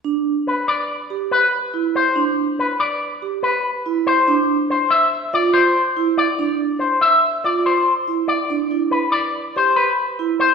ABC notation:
X:1
M:5/4
L:1/8
Q:1/4=142
K:C
V:1 name="Clean electric guitar"
z2 B d z2 B z2 c | z2 B d z2 B z2 c | z2 c e z d c z2 d | z2 c e z d c z2 d |
z2 B d z c B z2 c |]
V:2 name="Vibraphone"
D z4 G z2 E z | D z4 G z2 E z | D z4 F z2 E z | D z4 F z2 E z |
D E z3 G z2 E z |]